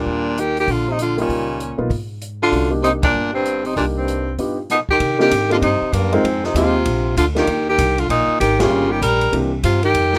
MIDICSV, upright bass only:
0, 0, Header, 1, 3, 480
1, 0, Start_track
1, 0, Key_signature, -3, "minor"
1, 0, Tempo, 308801
1, 95, Time_signature, 4, 2, 24, 8
1, 15830, End_track
2, 0, Start_track
2, 0, Title_t, "Upright bass"
2, 0, Program_c, 0, 32
2, 92, Note_on_c, 0, 39, 69
2, 1005, Note_off_c, 0, 39, 0
2, 1046, Note_on_c, 0, 34, 85
2, 1962, Note_off_c, 0, 34, 0
2, 2003, Note_on_c, 0, 37, 71
2, 2736, Note_off_c, 0, 37, 0
2, 2772, Note_on_c, 0, 35, 67
2, 2940, Note_off_c, 0, 35, 0
2, 2949, Note_on_c, 0, 44, 81
2, 3873, Note_off_c, 0, 44, 0
2, 3920, Note_on_c, 0, 36, 71
2, 4839, Note_off_c, 0, 36, 0
2, 4876, Note_on_c, 0, 31, 72
2, 5798, Note_off_c, 0, 31, 0
2, 5846, Note_on_c, 0, 36, 68
2, 6763, Note_off_c, 0, 36, 0
2, 7768, Note_on_c, 0, 48, 77
2, 8238, Note_off_c, 0, 48, 0
2, 8247, Note_on_c, 0, 44, 83
2, 8717, Note_off_c, 0, 44, 0
2, 8729, Note_on_c, 0, 43, 82
2, 9014, Note_off_c, 0, 43, 0
2, 9208, Note_on_c, 0, 42, 86
2, 9677, Note_off_c, 0, 42, 0
2, 9689, Note_on_c, 0, 41, 74
2, 10158, Note_off_c, 0, 41, 0
2, 10171, Note_on_c, 0, 39, 87
2, 10639, Note_off_c, 0, 39, 0
2, 10654, Note_on_c, 0, 34, 85
2, 11120, Note_off_c, 0, 34, 0
2, 11138, Note_on_c, 0, 38, 91
2, 11602, Note_off_c, 0, 38, 0
2, 11615, Note_on_c, 0, 39, 72
2, 12080, Note_off_c, 0, 39, 0
2, 12099, Note_on_c, 0, 36, 97
2, 12562, Note_off_c, 0, 36, 0
2, 12577, Note_on_c, 0, 34, 89
2, 12857, Note_off_c, 0, 34, 0
2, 13057, Note_on_c, 0, 32, 93
2, 13521, Note_off_c, 0, 32, 0
2, 13533, Note_on_c, 0, 31, 77
2, 13998, Note_off_c, 0, 31, 0
2, 14013, Note_on_c, 0, 34, 90
2, 14478, Note_off_c, 0, 34, 0
2, 14493, Note_on_c, 0, 36, 87
2, 14958, Note_off_c, 0, 36, 0
2, 14977, Note_on_c, 0, 43, 91
2, 15440, Note_off_c, 0, 43, 0
2, 15447, Note_on_c, 0, 41, 83
2, 15830, Note_off_c, 0, 41, 0
2, 15830, End_track
3, 0, Start_track
3, 0, Title_t, "Muted upright bass strokes"
3, 9038, Note_on_c, 9, 29, 40
3, 9194, Note_off_c, 9, 29, 0
3, 12865, Note_on_c, 9, 29, 39
3, 13020, Note_off_c, 9, 29, 0
3, 15830, End_track
0, 0, End_of_file